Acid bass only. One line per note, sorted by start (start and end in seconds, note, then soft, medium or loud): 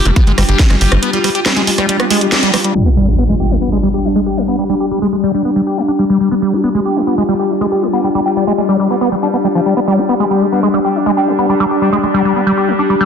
0.05 0.11 G#3 medium
0.16 0.24 B3 medium
0.27 0.32 G#3 loud
0.38 0.43 G3 loud
0.49 0.61 G4 medium
0.59 0.63 D4 medium
0.70 0.76 G#3 loud
0.81 0.93 G4 medium
0.92 0.97 G#3 medium
1.03 1.11 B3 medium
1.13 1.19 G3 medium
1.24 1.30 G3 loud
1.35 1.40 G4 medium
1.46 1.54 G3 medium
1.57 1.62 G#3 loud
1.67 1.71 G#3 medium
1.78 1.86 G3 loud
1.89 1.97 G3 medium
2.00 2.05 B3 medium
2.10 2.23 G#3 loud
2.21 2.27 G3 loud
2.32 2.37 G4 medium
2.43 2.51 G3 loud
2.54 2.57 G3 loud
2.64 2.73 G3 medium
2.75 2.83 G3 medium
2.86 2.89 B3 loud
2.97 3.09 G3 loud
3.08 3.16 G4 loud
3.18 3.24 B3 loud
3.29 3.35 G#3 loud
3.40 3.52 G4 medium
3.51 3.56 G#3 medium
3.62 3.70 B3 medium
3.72 3.78 G#3 loud
3.83 3.89 G3 loud
3.94 4.06 G4 medium
4.05 4.08 D4 medium
4.16 4.21 G#3 loud
4.26 4.39 G4 medium
4.37 4.43 G#3 medium
4.48 4.56 B3 medium
4.59 4.64 G3 medium
4.69 4.75 G3 loud
4.80 4.86 G4 medium
4.91 4.99 G3 medium
5.02 5.07 G#3 loud
5.13 5.16 G#3 medium
5.23 5.32 G3 loud
5.34 5.42 G3 medium
5.45 5.50 B3 medium
5.56 5.61 G3 loud
5.67 5.79 G4 medium
5.77 5.83 G#3 medium
5.88 5.91 D4 medium
5.99 6.04 G3 medium
6.10 6.18 G3 loud
6.21 6.29 G3 medium
6.31 6.35 B3 loud
6.42 6.54 G3 loud
6.53 6.61 G4 loud
6.64 6.69 B3 loud
6.75 6.80 G#3 loud
6.85 6.98 G4 medium
6.96 7.02 G#3 medium
7.07 7.15 B3 medium
7.18 7.23 G#3 loud
7.29 7.34 G3 loud
7.39 7.52 G4 medium
7.50 7.53 D4 medium
7.61 7.66 G#3 loud
7.72 7.84 G4 medium
7.82 7.88 G#3 medium
7.93 8.01 B3 medium
8.04 8.09 G3 medium
8.15 8.20 G3 loud
8.26 8.31 G4 medium
8.36 8.45 G3 medium
8.47 8.53 G#3 loud
8.58 8.61 G#3 medium
8.69 8.77 G3 loud
8.80 8.88 G3 medium
8.90 8.96 B3 medium
9.01 9.09 B3 loud
9.12 9.15 G3 loud
9.23 9.28 D4 medium
9.34 9.37 B3 medium
9.44 9.48 G3 medium
9.55 9.61 F3 medium
9.66 9.74 G3 medium
9.77 9.80 B3 loud
9.88 10.00 G3 loud
9.98 10.06 G4 loud
10.09 10.14 B3 loud
10.20 10.25 G#3 loud
10.31 10.43 G3 medium
10.41 10.47 G#3 medium
10.52 10.60 B3 medium
10.63 10.68 G#3 loud
10.74 10.79 G3 loud
10.85 10.97 G4 medium
10.95 10.99 D4 medium
11.06 11.12 G#3 loud
11.17 11.29 G4 medium
11.28 11.33 G#3 medium
11.39 11.47 B3 medium
11.49 11.55 G3 medium
11.60 11.66 G3 loud
11.71 11.76 G4 medium
11.82 11.90 G3 medium
11.93 11.98 G#3 loud
12.03 12.07 G#3 medium
12.14 12.22 G3 loud
12.25 12.33 G3 medium
12.36 12.41 B3 medium
12.46 12.52 G3 loud
12.57 12.70 G4 medium
12.68 12.73 G#3 medium
12.79 12.82 D4 medium
12.90 12.95 G3 medium
13.00 13.05 G3 loud